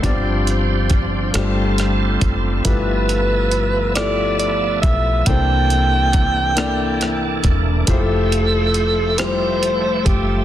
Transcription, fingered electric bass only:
X:1
M:6/8
L:1/8
Q:3/8=46
K:Gmix
V:1 name="Fingered electric bass" clef=bass
G,,,3 G,,,2 ^F,,, | G,,,4- G,,, B,,, | C,,4- C,, E,,, | F,,,4- F,,, ^F,,, |]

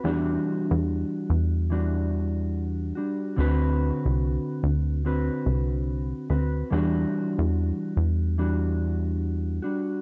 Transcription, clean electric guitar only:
X:1
M:4/4
L:1/8
Q:"Swing 16ths" 1/4=72
K:Em
V:1 name="Clean electric guitar"
[E,G,DF]4 [E,G,DF]3 [G,DF] | [D,CFB]4 [D,CFB]3 [CFB] | [E,G,DF]4 [E,G,DF]3 [G,DF] |]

